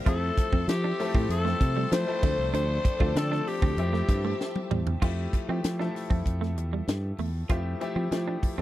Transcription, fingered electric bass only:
0, 0, Header, 1, 2, 480
1, 0, Start_track
1, 0, Tempo, 620476
1, 46, Time_signature, 4, 2, 24, 8
1, 6666, End_track
2, 0, Start_track
2, 0, Title_t, "Fingered electric bass"
2, 0, Program_c, 0, 33
2, 49, Note_on_c, 0, 41, 104
2, 231, Note_off_c, 0, 41, 0
2, 404, Note_on_c, 0, 41, 104
2, 496, Note_off_c, 0, 41, 0
2, 524, Note_on_c, 0, 53, 103
2, 707, Note_off_c, 0, 53, 0
2, 884, Note_on_c, 0, 45, 92
2, 976, Note_off_c, 0, 45, 0
2, 998, Note_on_c, 0, 41, 92
2, 1184, Note_off_c, 0, 41, 0
2, 1242, Note_on_c, 0, 48, 86
2, 1426, Note_off_c, 0, 48, 0
2, 1482, Note_on_c, 0, 53, 111
2, 1575, Note_off_c, 0, 53, 0
2, 1722, Note_on_c, 0, 38, 98
2, 1815, Note_off_c, 0, 38, 0
2, 1843, Note_on_c, 0, 36, 85
2, 1935, Note_off_c, 0, 36, 0
2, 1961, Note_on_c, 0, 38, 115
2, 2145, Note_off_c, 0, 38, 0
2, 2323, Note_on_c, 0, 38, 115
2, 2415, Note_off_c, 0, 38, 0
2, 2439, Note_on_c, 0, 50, 105
2, 2624, Note_off_c, 0, 50, 0
2, 2800, Note_on_c, 0, 38, 99
2, 2893, Note_off_c, 0, 38, 0
2, 2916, Note_on_c, 0, 41, 113
2, 3102, Note_off_c, 0, 41, 0
2, 3160, Note_on_c, 0, 43, 90
2, 3344, Note_off_c, 0, 43, 0
2, 3648, Note_on_c, 0, 40, 87
2, 3829, Note_off_c, 0, 40, 0
2, 3883, Note_on_c, 0, 41, 103
2, 4066, Note_off_c, 0, 41, 0
2, 4244, Note_on_c, 0, 53, 81
2, 4335, Note_off_c, 0, 53, 0
2, 4366, Note_on_c, 0, 53, 100
2, 4548, Note_off_c, 0, 53, 0
2, 4721, Note_on_c, 0, 41, 85
2, 4813, Note_off_c, 0, 41, 0
2, 4842, Note_on_c, 0, 41, 82
2, 5076, Note_off_c, 0, 41, 0
2, 5076, Note_on_c, 0, 40, 84
2, 5262, Note_off_c, 0, 40, 0
2, 5320, Note_on_c, 0, 43, 93
2, 5504, Note_off_c, 0, 43, 0
2, 5558, Note_on_c, 0, 40, 78
2, 5743, Note_off_c, 0, 40, 0
2, 5800, Note_on_c, 0, 41, 100
2, 5985, Note_off_c, 0, 41, 0
2, 6155, Note_on_c, 0, 53, 96
2, 6250, Note_off_c, 0, 53, 0
2, 6277, Note_on_c, 0, 53, 99
2, 6463, Note_off_c, 0, 53, 0
2, 6637, Note_on_c, 0, 41, 85
2, 6666, Note_off_c, 0, 41, 0
2, 6666, End_track
0, 0, End_of_file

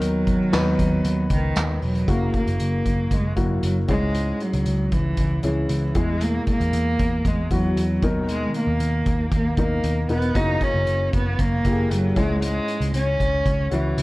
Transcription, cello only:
0, 0, Header, 1, 2, 480
1, 0, Start_track
1, 0, Tempo, 517241
1, 10, Time_signature, 4, 2, 24, 8
1, 13014, End_track
2, 0, Start_track
2, 0, Title_t, "Cello"
2, 0, Program_c, 0, 42
2, 0, Note_on_c, 0, 54, 93
2, 1179, Note_off_c, 0, 54, 0
2, 1222, Note_on_c, 0, 51, 77
2, 1662, Note_off_c, 0, 51, 0
2, 1699, Note_on_c, 0, 54, 74
2, 1942, Note_on_c, 0, 58, 84
2, 1956, Note_off_c, 0, 54, 0
2, 2176, Note_off_c, 0, 58, 0
2, 2184, Note_on_c, 0, 58, 76
2, 2902, Note_on_c, 0, 56, 70
2, 2916, Note_off_c, 0, 58, 0
2, 3136, Note_off_c, 0, 56, 0
2, 3143, Note_on_c, 0, 54, 59
2, 3360, Note_off_c, 0, 54, 0
2, 3381, Note_on_c, 0, 54, 73
2, 3486, Note_off_c, 0, 54, 0
2, 3620, Note_on_c, 0, 56, 85
2, 4102, Note_on_c, 0, 54, 77
2, 4116, Note_off_c, 0, 56, 0
2, 4577, Note_on_c, 0, 52, 81
2, 4590, Note_off_c, 0, 54, 0
2, 5053, Note_off_c, 0, 52, 0
2, 5063, Note_on_c, 0, 52, 70
2, 5534, Note_on_c, 0, 56, 82
2, 5548, Note_off_c, 0, 52, 0
2, 5780, Note_on_c, 0, 58, 83
2, 5794, Note_off_c, 0, 56, 0
2, 6015, Note_off_c, 0, 58, 0
2, 6020, Note_on_c, 0, 58, 94
2, 6744, Note_on_c, 0, 56, 78
2, 6758, Note_off_c, 0, 58, 0
2, 6970, Note_off_c, 0, 56, 0
2, 6975, Note_on_c, 0, 54, 83
2, 7655, Note_off_c, 0, 54, 0
2, 7701, Note_on_c, 0, 56, 87
2, 7918, Note_off_c, 0, 56, 0
2, 7939, Note_on_c, 0, 58, 84
2, 8617, Note_off_c, 0, 58, 0
2, 8658, Note_on_c, 0, 58, 85
2, 8877, Note_off_c, 0, 58, 0
2, 8901, Note_on_c, 0, 58, 81
2, 9342, Note_off_c, 0, 58, 0
2, 9379, Note_on_c, 0, 59, 86
2, 9614, Note_on_c, 0, 63, 96
2, 9628, Note_off_c, 0, 59, 0
2, 9859, Note_on_c, 0, 61, 90
2, 9873, Note_off_c, 0, 63, 0
2, 10334, Note_off_c, 0, 61, 0
2, 10340, Note_on_c, 0, 59, 81
2, 10574, Note_on_c, 0, 58, 95
2, 10588, Note_off_c, 0, 59, 0
2, 11057, Note_on_c, 0, 54, 91
2, 11071, Note_off_c, 0, 58, 0
2, 11302, Note_on_c, 0, 56, 89
2, 11316, Note_off_c, 0, 54, 0
2, 11529, Note_off_c, 0, 56, 0
2, 11535, Note_on_c, 0, 56, 94
2, 11978, Note_off_c, 0, 56, 0
2, 12013, Note_on_c, 0, 61, 97
2, 12693, Note_off_c, 0, 61, 0
2, 12735, Note_on_c, 0, 52, 78
2, 13014, Note_off_c, 0, 52, 0
2, 13014, End_track
0, 0, End_of_file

